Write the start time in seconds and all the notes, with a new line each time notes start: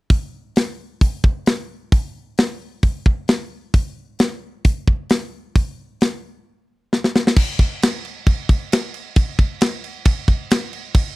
0.10 kick, open hi-hat
0.56 snare, open hi-hat
1.01 kick, open hi-hat
1.24 kick
1.46 snare, open hi-hat
1.92 kick, open hi-hat
2.38 snare, open hi-hat
2.83 kick, open hi-hat
3.06 kick
3.28 snare, open hi-hat
3.74 kick, open hi-hat
4.19 snare, open hi-hat
4.65 kick, open hi-hat
4.87 kick
5.10 snare, open hi-hat
5.56 kick, open hi-hat
6.01 snare, open hi-hat
6.93 snare
7.04 snare
7.16 snare
7.27 snare
7.37 kick, crash
7.59 kick, crash
7.82 snare, crash
8.05 crash
8.26 kick, crash
8.49 kick, crash
8.72 snare, crash
8.94 crash
9.16 kick, crash
9.39 kick, crash
9.61 snare, crash
9.84 crash
10.05 kick, crash
10.28 kick, crash
10.51 snare, crash
10.73 crash
10.95 kick, crash